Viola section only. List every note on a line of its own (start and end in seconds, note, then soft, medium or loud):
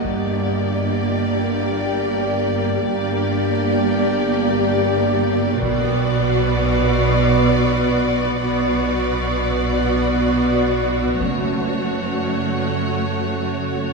0.05 2.80 A#3 soft
0.05 2.79 G4 soft
2.84 5.59 A#3 soft
2.84 5.59 G4 soft
5.62 8.37 B3 soft
5.62 8.40 F#4 soft
8.41 11.17 B3 soft
8.41 13.93 F#4 soft
11.21 13.93 A3 soft